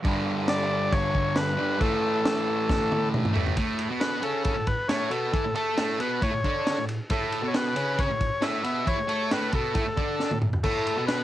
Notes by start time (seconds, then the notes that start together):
0.04 G2 D3, kick, crash
0.08 G3
0.48 D5, snare, crash
0.92 C#5, kick, crash
1.15 kick
1.36 B4, snare, crash
1.57 G2 D3 G3
1.79 A2 E3 A3 A4, kick, crash
2.25 snare, crash
2.69 kick, snare
2.92 high tom
3.14 mid tom
3.25 mid tom
3.34 E3 A3, floor tom
3.38 A2
3.46 floor tom
3.57 A2 A3, kick, ride
3.79 ride
3.90 B2 B3
4.00 B4, snare, ride
4.22 C#3 C#4 A4, ride
4.44 A4, kick, ride
4.56 A2
4.67 B4, kick, ride
4.88 A2 A3 C#5, snare, ride
5.11 B2 B3 A4, ride
5.33 E3 E4, kick, ride
5.46 A2
5.55 A3 A4, ride
5.77 A2 A3, snare, ride
6.00 B2 B3 B4, ride
6.22 A2 A3 C#5, kick, ride
6.32 A2
6.44 D3 D4, kick, ride
6.67 snare, ride
6.78 A2
6.89 ride
7.10 A2 A3 A4, kick, ride
7.32 ride
7.42 B2 B3
7.48 C#5
7.54 B4, snare, ride
7.75 C#3 C#4, ride
7.99 C#5, kick, ride
8.09 A2
8.21 kick, ride
8.41 A2 A3 E5, snare, ride
8.64 B2 B3 E5, ride
8.86 E3 E4 C#5, kick, ride
8.97 A2
9.08 A3 A4, ride
9.31 A2 A3 B4, snare, ride
9.52 B2 B3 A4, kick, ride
9.75 A2 A3, kick, ride
9.86 A2
9.97 D3 D4, kick, ride
10.20 snare
10.30 A2, high tom
10.42 mid tom
10.53 floor tom
10.63 A2 A3 A4, kick, crash
10.87 ride
10.97 B2 B3
11.07 B4, snare, ride